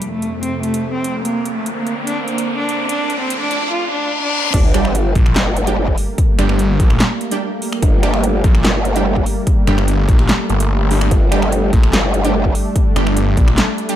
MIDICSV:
0, 0, Header, 1, 10, 480
1, 0, Start_track
1, 0, Key_signature, -2, "minor"
1, 0, Tempo, 410959
1, 1459, Time_signature, 4, 2, 24, 8
1, 16303, End_track
2, 0, Start_track
2, 0, Title_t, "Synth stab"
2, 0, Program_c, 0, 62
2, 5539, Note_on_c, 0, 55, 100
2, 5539, Note_on_c, 0, 67, 110
2, 5540, Note_on_c, 0, 62, 88
2, 5651, Note_off_c, 0, 55, 0
2, 5652, Note_off_c, 0, 62, 0
2, 5652, Note_off_c, 0, 67, 0
2, 6624, Note_on_c, 0, 55, 94
2, 6624, Note_on_c, 0, 62, 88
2, 6624, Note_on_c, 0, 67, 108
2, 6689, Note_off_c, 0, 55, 0
2, 6689, Note_off_c, 0, 62, 0
2, 6689, Note_off_c, 0, 67, 0
2, 7459, Note_on_c, 0, 62, 92
2, 7460, Note_on_c, 0, 55, 99
2, 7460, Note_on_c, 0, 67, 111
2, 7571, Note_off_c, 0, 62, 0
2, 7572, Note_off_c, 0, 55, 0
2, 7572, Note_off_c, 0, 67, 0
2, 8543, Note_on_c, 0, 55, 96
2, 8543, Note_on_c, 0, 62, 88
2, 8543, Note_on_c, 0, 67, 104
2, 8609, Note_off_c, 0, 55, 0
2, 8609, Note_off_c, 0, 62, 0
2, 8609, Note_off_c, 0, 67, 0
2, 9379, Note_on_c, 0, 55, 100
2, 9379, Note_on_c, 0, 62, 90
2, 9379, Note_on_c, 0, 67, 109
2, 9491, Note_off_c, 0, 55, 0
2, 9491, Note_off_c, 0, 62, 0
2, 9491, Note_off_c, 0, 67, 0
2, 10463, Note_on_c, 0, 55, 95
2, 10463, Note_on_c, 0, 62, 89
2, 10463, Note_on_c, 0, 67, 105
2, 10529, Note_off_c, 0, 55, 0
2, 10529, Note_off_c, 0, 62, 0
2, 10529, Note_off_c, 0, 67, 0
2, 11299, Note_on_c, 0, 62, 91
2, 11300, Note_on_c, 0, 55, 101
2, 11300, Note_on_c, 0, 67, 112
2, 11412, Note_off_c, 0, 55, 0
2, 11412, Note_off_c, 0, 62, 0
2, 11412, Note_off_c, 0, 67, 0
2, 12739, Note_on_c, 0, 62, 70
2, 12740, Note_on_c, 0, 55, 76
2, 12740, Note_on_c, 0, 67, 85
2, 12809, Note_off_c, 0, 62, 0
2, 12810, Note_off_c, 0, 55, 0
2, 12810, Note_off_c, 0, 67, 0
2, 13219, Note_on_c, 0, 55, 99
2, 13219, Note_on_c, 0, 62, 92
2, 13219, Note_on_c, 0, 67, 113
2, 13331, Note_off_c, 0, 55, 0
2, 13331, Note_off_c, 0, 62, 0
2, 13331, Note_off_c, 0, 67, 0
2, 14303, Note_on_c, 0, 55, 98
2, 14303, Note_on_c, 0, 62, 90
2, 14303, Note_on_c, 0, 67, 107
2, 14369, Note_off_c, 0, 55, 0
2, 14369, Note_off_c, 0, 62, 0
2, 14369, Note_off_c, 0, 67, 0
2, 15139, Note_on_c, 0, 55, 100
2, 15139, Note_on_c, 0, 62, 90
2, 15139, Note_on_c, 0, 67, 109
2, 15251, Note_off_c, 0, 55, 0
2, 15251, Note_off_c, 0, 62, 0
2, 15251, Note_off_c, 0, 67, 0
2, 16222, Note_on_c, 0, 55, 97
2, 16222, Note_on_c, 0, 62, 87
2, 16222, Note_on_c, 0, 67, 107
2, 16289, Note_off_c, 0, 55, 0
2, 16289, Note_off_c, 0, 62, 0
2, 16289, Note_off_c, 0, 67, 0
2, 16303, End_track
3, 0, Start_track
3, 0, Title_t, "Cello"
3, 0, Program_c, 1, 42
3, 144, Note_on_c, 1, 57, 91
3, 443, Note_off_c, 1, 57, 0
3, 500, Note_on_c, 1, 60, 89
3, 702, Note_off_c, 1, 60, 0
3, 740, Note_on_c, 1, 57, 92
3, 1043, Note_off_c, 1, 57, 0
3, 1102, Note_on_c, 1, 60, 93
3, 1402, Note_off_c, 1, 60, 0
3, 1459, Note_on_c, 1, 58, 96
3, 1763, Note_off_c, 1, 58, 0
3, 1823, Note_on_c, 1, 57, 88
3, 2023, Note_off_c, 1, 57, 0
3, 2064, Note_on_c, 1, 58, 91
3, 2363, Note_off_c, 1, 58, 0
3, 2419, Note_on_c, 1, 62, 86
3, 2621, Note_off_c, 1, 62, 0
3, 2659, Note_on_c, 1, 58, 96
3, 2963, Note_off_c, 1, 58, 0
3, 3022, Note_on_c, 1, 62, 94
3, 3322, Note_off_c, 1, 62, 0
3, 3379, Note_on_c, 1, 62, 100
3, 3683, Note_off_c, 1, 62, 0
3, 3743, Note_on_c, 1, 60, 88
3, 3943, Note_off_c, 1, 60, 0
3, 3982, Note_on_c, 1, 62, 96
3, 4282, Note_off_c, 1, 62, 0
3, 4338, Note_on_c, 1, 65, 92
3, 4541, Note_off_c, 1, 65, 0
3, 4580, Note_on_c, 1, 62, 98
3, 4883, Note_off_c, 1, 62, 0
3, 4944, Note_on_c, 1, 62, 97
3, 5243, Note_off_c, 1, 62, 0
3, 16303, End_track
4, 0, Start_track
4, 0, Title_t, "Analog synth pad"
4, 0, Program_c, 2, 89
4, 0, Note_on_c, 2, 41, 79
4, 0, Note_on_c, 2, 48, 73
4, 0, Note_on_c, 2, 57, 85
4, 1440, Note_off_c, 2, 41, 0
4, 1440, Note_off_c, 2, 48, 0
4, 1440, Note_off_c, 2, 57, 0
4, 1460, Note_on_c, 2, 50, 81
4, 1460, Note_on_c, 2, 58, 72
4, 1460, Note_on_c, 2, 60, 87
4, 3360, Note_off_c, 2, 50, 0
4, 3360, Note_off_c, 2, 58, 0
4, 3361, Note_off_c, 2, 60, 0
4, 5299, Note_on_c, 2, 55, 79
4, 5299, Note_on_c, 2, 57, 71
4, 5299, Note_on_c, 2, 58, 88
4, 12957, Note_off_c, 2, 58, 0
4, 12980, Note_on_c, 2, 62, 90
4, 16303, Note_off_c, 2, 55, 0
4, 16303, Note_off_c, 2, 57, 0
4, 16303, Note_off_c, 2, 62, 0
4, 16303, End_track
5, 0, Start_track
5, 0, Title_t, "Detuned saw bass"
5, 0, Program_c, 3, 39
5, 6020, Note_on_c, 3, 34, 94
5, 6241, Note_off_c, 3, 34, 0
5, 7459, Note_on_c, 3, 31, 98
5, 7921, Note_off_c, 3, 31, 0
5, 7939, Note_on_c, 3, 34, 96
5, 8161, Note_off_c, 3, 34, 0
5, 9859, Note_on_c, 3, 34, 95
5, 10081, Note_off_c, 3, 34, 0
5, 11299, Note_on_c, 3, 31, 97
5, 11760, Note_off_c, 3, 31, 0
5, 11780, Note_on_c, 3, 34, 97
5, 12001, Note_off_c, 3, 34, 0
5, 12259, Note_on_c, 3, 31, 94
5, 12481, Note_off_c, 3, 31, 0
5, 12499, Note_on_c, 3, 31, 94
5, 12960, Note_off_c, 3, 31, 0
5, 13699, Note_on_c, 3, 34, 100
5, 13921, Note_off_c, 3, 34, 0
5, 15139, Note_on_c, 3, 31, 99
5, 15601, Note_off_c, 3, 31, 0
5, 15619, Note_on_c, 3, 34, 98
5, 15841, Note_off_c, 3, 34, 0
5, 16303, End_track
6, 0, Start_track
6, 0, Title_t, "Wobble bass"
6, 0, Program_c, 4, 39
6, 5300, Note_on_c, 4, 31, 93
6, 6001, Note_off_c, 4, 31, 0
6, 6259, Note_on_c, 4, 31, 98
6, 6961, Note_off_c, 4, 31, 0
6, 9139, Note_on_c, 4, 31, 99
6, 9841, Note_off_c, 4, 31, 0
6, 10099, Note_on_c, 4, 31, 98
6, 10800, Note_off_c, 4, 31, 0
6, 12980, Note_on_c, 4, 31, 98
6, 13681, Note_off_c, 4, 31, 0
6, 13940, Note_on_c, 4, 31, 100
6, 14641, Note_off_c, 4, 31, 0
6, 16303, End_track
7, 0, Start_track
7, 0, Title_t, "Reverse cymbal"
7, 0, Program_c, 5, 119
7, 4339, Note_on_c, 5, 60, 74
7, 5299, Note_off_c, 5, 60, 0
7, 16303, End_track
8, 0, Start_track
8, 0, Title_t, "Riser"
8, 0, Program_c, 6, 103
8, 0, Note_on_c, 6, 60, 73
8, 4339, Note_off_c, 6, 60, 0
8, 16303, End_track
9, 0, Start_track
9, 0, Title_t, "Sub drop"
9, 0, Program_c, 7, 103
9, 5299, Note_on_c, 7, 60, 75
9, 7219, Note_off_c, 7, 60, 0
9, 16303, End_track
10, 0, Start_track
10, 0, Title_t, "Drums"
10, 19, Note_on_c, 9, 42, 76
10, 136, Note_off_c, 9, 42, 0
10, 260, Note_on_c, 9, 42, 51
10, 377, Note_off_c, 9, 42, 0
10, 500, Note_on_c, 9, 42, 75
10, 617, Note_off_c, 9, 42, 0
10, 740, Note_on_c, 9, 42, 51
10, 857, Note_off_c, 9, 42, 0
10, 863, Note_on_c, 9, 42, 76
10, 980, Note_off_c, 9, 42, 0
10, 1219, Note_on_c, 9, 42, 61
10, 1336, Note_off_c, 9, 42, 0
10, 1460, Note_on_c, 9, 42, 75
10, 1577, Note_off_c, 9, 42, 0
10, 1699, Note_on_c, 9, 42, 49
10, 1816, Note_off_c, 9, 42, 0
10, 1940, Note_on_c, 9, 42, 73
10, 2057, Note_off_c, 9, 42, 0
10, 2180, Note_on_c, 9, 42, 51
10, 2297, Note_off_c, 9, 42, 0
10, 2420, Note_on_c, 9, 42, 74
10, 2536, Note_off_c, 9, 42, 0
10, 2659, Note_on_c, 9, 42, 50
10, 2776, Note_off_c, 9, 42, 0
10, 2782, Note_on_c, 9, 42, 75
10, 2899, Note_off_c, 9, 42, 0
10, 3139, Note_on_c, 9, 42, 60
10, 3256, Note_off_c, 9, 42, 0
10, 3379, Note_on_c, 9, 42, 73
10, 3496, Note_off_c, 9, 42, 0
10, 3619, Note_on_c, 9, 42, 49
10, 3736, Note_off_c, 9, 42, 0
10, 3859, Note_on_c, 9, 42, 75
10, 3975, Note_off_c, 9, 42, 0
10, 4099, Note_on_c, 9, 42, 51
10, 4216, Note_off_c, 9, 42, 0
10, 5299, Note_on_c, 9, 42, 80
10, 5299, Note_on_c, 9, 49, 100
10, 5300, Note_on_c, 9, 36, 116
10, 5416, Note_off_c, 9, 36, 0
10, 5416, Note_off_c, 9, 42, 0
10, 5416, Note_off_c, 9, 49, 0
10, 5540, Note_on_c, 9, 26, 72
10, 5540, Note_on_c, 9, 42, 55
10, 5657, Note_off_c, 9, 26, 0
10, 5657, Note_off_c, 9, 42, 0
10, 5664, Note_on_c, 9, 26, 48
10, 5780, Note_on_c, 9, 42, 80
10, 5781, Note_off_c, 9, 26, 0
10, 5897, Note_off_c, 9, 42, 0
10, 6020, Note_on_c, 9, 36, 106
10, 6021, Note_on_c, 9, 42, 53
10, 6137, Note_off_c, 9, 36, 0
10, 6137, Note_off_c, 9, 42, 0
10, 6144, Note_on_c, 9, 26, 52
10, 6260, Note_on_c, 9, 38, 120
10, 6260, Note_on_c, 9, 39, 95
10, 6260, Note_on_c, 9, 42, 80
10, 6261, Note_off_c, 9, 26, 0
10, 6377, Note_off_c, 9, 38, 0
10, 6377, Note_off_c, 9, 39, 0
10, 6377, Note_off_c, 9, 42, 0
10, 6501, Note_on_c, 9, 42, 56
10, 6618, Note_off_c, 9, 42, 0
10, 6624, Note_on_c, 9, 42, 84
10, 6741, Note_off_c, 9, 42, 0
10, 6863, Note_on_c, 9, 36, 62
10, 6980, Note_off_c, 9, 36, 0
10, 6980, Note_on_c, 9, 46, 95
10, 7097, Note_off_c, 9, 46, 0
10, 7220, Note_on_c, 9, 36, 121
10, 7220, Note_on_c, 9, 42, 79
10, 7337, Note_off_c, 9, 36, 0
10, 7337, Note_off_c, 9, 42, 0
10, 7459, Note_on_c, 9, 26, 77
10, 7459, Note_on_c, 9, 42, 52
10, 7576, Note_off_c, 9, 26, 0
10, 7576, Note_off_c, 9, 42, 0
10, 7584, Note_on_c, 9, 26, 49
10, 7699, Note_on_c, 9, 42, 78
10, 7701, Note_off_c, 9, 26, 0
10, 7816, Note_off_c, 9, 42, 0
10, 7939, Note_on_c, 9, 36, 109
10, 7939, Note_on_c, 9, 42, 54
10, 8056, Note_off_c, 9, 36, 0
10, 8056, Note_off_c, 9, 42, 0
10, 8063, Note_on_c, 9, 26, 51
10, 8179, Note_on_c, 9, 38, 119
10, 8179, Note_on_c, 9, 39, 91
10, 8179, Note_on_c, 9, 42, 82
10, 8180, Note_off_c, 9, 26, 0
10, 8296, Note_off_c, 9, 38, 0
10, 8296, Note_off_c, 9, 39, 0
10, 8296, Note_off_c, 9, 42, 0
10, 8420, Note_on_c, 9, 42, 53
10, 8537, Note_off_c, 9, 42, 0
10, 8543, Note_on_c, 9, 42, 81
10, 8660, Note_off_c, 9, 42, 0
10, 8899, Note_on_c, 9, 46, 93
10, 9016, Note_off_c, 9, 46, 0
10, 9023, Note_on_c, 9, 26, 72
10, 9139, Note_on_c, 9, 36, 120
10, 9139, Note_on_c, 9, 42, 77
10, 9140, Note_off_c, 9, 26, 0
10, 9256, Note_off_c, 9, 36, 0
10, 9256, Note_off_c, 9, 42, 0
10, 9380, Note_on_c, 9, 26, 78
10, 9380, Note_on_c, 9, 42, 51
10, 9496, Note_off_c, 9, 26, 0
10, 9496, Note_off_c, 9, 42, 0
10, 9503, Note_on_c, 9, 26, 50
10, 9619, Note_on_c, 9, 42, 74
10, 9620, Note_off_c, 9, 26, 0
10, 9736, Note_off_c, 9, 42, 0
10, 9859, Note_on_c, 9, 36, 117
10, 9859, Note_on_c, 9, 42, 51
10, 9976, Note_off_c, 9, 36, 0
10, 9976, Note_off_c, 9, 42, 0
10, 9982, Note_on_c, 9, 26, 53
10, 10098, Note_on_c, 9, 38, 127
10, 10098, Note_on_c, 9, 39, 92
10, 10098, Note_on_c, 9, 42, 77
10, 10099, Note_off_c, 9, 26, 0
10, 10215, Note_off_c, 9, 38, 0
10, 10215, Note_off_c, 9, 39, 0
10, 10215, Note_off_c, 9, 42, 0
10, 10339, Note_on_c, 9, 42, 51
10, 10455, Note_off_c, 9, 42, 0
10, 10462, Note_on_c, 9, 42, 79
10, 10579, Note_off_c, 9, 42, 0
10, 10703, Note_on_c, 9, 36, 64
10, 10819, Note_off_c, 9, 36, 0
10, 10819, Note_on_c, 9, 46, 92
10, 10936, Note_off_c, 9, 46, 0
10, 11059, Note_on_c, 9, 36, 122
10, 11059, Note_on_c, 9, 42, 76
10, 11176, Note_off_c, 9, 36, 0
10, 11176, Note_off_c, 9, 42, 0
10, 11299, Note_on_c, 9, 26, 77
10, 11299, Note_on_c, 9, 42, 49
10, 11416, Note_off_c, 9, 26, 0
10, 11416, Note_off_c, 9, 42, 0
10, 11423, Note_on_c, 9, 26, 54
10, 11539, Note_on_c, 9, 42, 73
10, 11540, Note_off_c, 9, 26, 0
10, 11656, Note_off_c, 9, 42, 0
10, 11779, Note_on_c, 9, 36, 113
10, 11780, Note_on_c, 9, 42, 51
10, 11896, Note_off_c, 9, 36, 0
10, 11897, Note_off_c, 9, 42, 0
10, 11903, Note_on_c, 9, 26, 54
10, 12020, Note_off_c, 9, 26, 0
10, 12020, Note_on_c, 9, 38, 120
10, 12020, Note_on_c, 9, 39, 88
10, 12020, Note_on_c, 9, 42, 75
10, 12136, Note_off_c, 9, 38, 0
10, 12136, Note_off_c, 9, 39, 0
10, 12136, Note_off_c, 9, 42, 0
10, 12259, Note_on_c, 9, 42, 51
10, 12376, Note_off_c, 9, 42, 0
10, 12383, Note_on_c, 9, 42, 78
10, 12500, Note_off_c, 9, 42, 0
10, 12739, Note_on_c, 9, 46, 92
10, 12856, Note_off_c, 9, 46, 0
10, 12864, Note_on_c, 9, 26, 77
10, 12979, Note_on_c, 9, 36, 119
10, 12980, Note_on_c, 9, 42, 75
10, 12981, Note_off_c, 9, 26, 0
10, 13096, Note_off_c, 9, 36, 0
10, 13096, Note_off_c, 9, 42, 0
10, 13219, Note_on_c, 9, 26, 82
10, 13219, Note_on_c, 9, 42, 50
10, 13336, Note_off_c, 9, 26, 0
10, 13336, Note_off_c, 9, 42, 0
10, 13343, Note_on_c, 9, 26, 55
10, 13460, Note_off_c, 9, 26, 0
10, 13460, Note_on_c, 9, 42, 74
10, 13577, Note_off_c, 9, 42, 0
10, 13699, Note_on_c, 9, 36, 106
10, 13700, Note_on_c, 9, 42, 50
10, 13816, Note_off_c, 9, 36, 0
10, 13816, Note_off_c, 9, 42, 0
10, 13823, Note_on_c, 9, 26, 57
10, 13939, Note_on_c, 9, 38, 121
10, 13939, Note_on_c, 9, 39, 83
10, 13939, Note_on_c, 9, 42, 76
10, 13940, Note_off_c, 9, 26, 0
10, 14055, Note_off_c, 9, 38, 0
10, 14055, Note_off_c, 9, 39, 0
10, 14055, Note_off_c, 9, 42, 0
10, 14179, Note_on_c, 9, 42, 51
10, 14295, Note_off_c, 9, 42, 0
10, 14303, Note_on_c, 9, 42, 76
10, 14420, Note_off_c, 9, 42, 0
10, 14543, Note_on_c, 9, 36, 63
10, 14659, Note_on_c, 9, 46, 98
10, 14660, Note_off_c, 9, 36, 0
10, 14775, Note_off_c, 9, 46, 0
10, 14899, Note_on_c, 9, 36, 113
10, 14899, Note_on_c, 9, 42, 76
10, 15016, Note_off_c, 9, 36, 0
10, 15016, Note_off_c, 9, 42, 0
10, 15139, Note_on_c, 9, 26, 80
10, 15139, Note_on_c, 9, 42, 52
10, 15255, Note_off_c, 9, 26, 0
10, 15255, Note_off_c, 9, 42, 0
10, 15262, Note_on_c, 9, 26, 56
10, 15379, Note_off_c, 9, 26, 0
10, 15379, Note_on_c, 9, 42, 78
10, 15495, Note_off_c, 9, 42, 0
10, 15619, Note_on_c, 9, 36, 106
10, 15619, Note_on_c, 9, 42, 53
10, 15736, Note_off_c, 9, 36, 0
10, 15736, Note_off_c, 9, 42, 0
10, 15742, Note_on_c, 9, 26, 57
10, 15858, Note_on_c, 9, 38, 113
10, 15858, Note_on_c, 9, 39, 87
10, 15858, Note_on_c, 9, 42, 80
10, 15859, Note_off_c, 9, 26, 0
10, 15975, Note_off_c, 9, 38, 0
10, 15975, Note_off_c, 9, 39, 0
10, 15975, Note_off_c, 9, 42, 0
10, 16099, Note_on_c, 9, 42, 52
10, 16215, Note_off_c, 9, 42, 0
10, 16222, Note_on_c, 9, 42, 78
10, 16303, Note_off_c, 9, 42, 0
10, 16303, End_track
0, 0, End_of_file